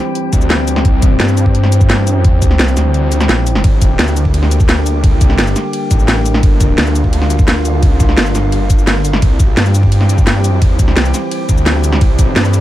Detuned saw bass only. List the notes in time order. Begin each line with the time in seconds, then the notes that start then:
0.33 D2
0.85 C2
1.20 G2
2.20 F2
2.42 D#2
2.59 C2
2.77 D2
3.29 A#1
3.64 G1
3.99 D2
4.96 C#2
5.24 C2
5.38 G1
5.91 A1
6.43 G1
6.78 D2
7.75 C#2
8.03 C2
8.17 G1
8.35 G1
9.22 C2
9.57 G2
10.57 F2
10.79 D#2
10.97 C2
11.49 D2
12.01 C2
12.36 G2